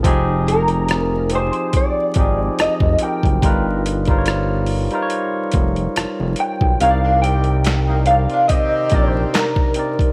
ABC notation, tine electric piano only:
X:1
M:4/4
L:1/16
Q:"Swing 16ths" 1/4=71
K:Fdor
V:1 name="Tine electric piano"
[F,CEGA]4- [F,CEGA] z [F,CEGA]3 z [F,CEGA]3 z [F,CEGB]2 | [G,^DF^A=B]2 z [G,DFAc_d]3 z [G,^DFAc_d]6 z3 | [C,CEB_d=d]4- [C,CEB_d=d] z [C,CEBd]3 z [C,CDEBd]3 z [C,CEBd]2 |]